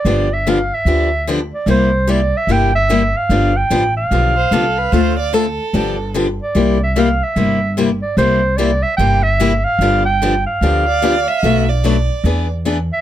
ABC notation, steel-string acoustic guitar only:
X:1
M:4/4
L:1/8
Q:"Swing" 1/4=148
K:Gmix
V:1 name="Steel-string acoustic guitar"
[D,F,B,DG] z [D,F,B,DG] z [D,F,B,DG] z [D,F,B,DG] z | [C,G,_B,EG] z [C,G,B,EG] z [C,G,B,EG] z [C,G,B,EG] z | [D,F,B,DG] z [D,F,B,DG] z [D,F,B,DG] z [D,F,B,DG] z | [D,A,CFA] z [D,A,CFA] z [D,F,B,DG] z [D,F,B,DG] z |
[C,G,_B,EG] z [C,G,B,EG] z [C,G,B,EG] z [C,G,B,EG] z | [C,G,_B,EG] z [C,G,B,EG] z [C,G,B,EG] z [C,G,B,EG] z | [D,F,B,DG] z [D,F,B,DG] z [D,F,B,DG] z [D,F,B,DG] z | [B,,^F,A,D^F] z [B,,F,A,DF] z [E,B,D^G] z [E,B,DG] z |]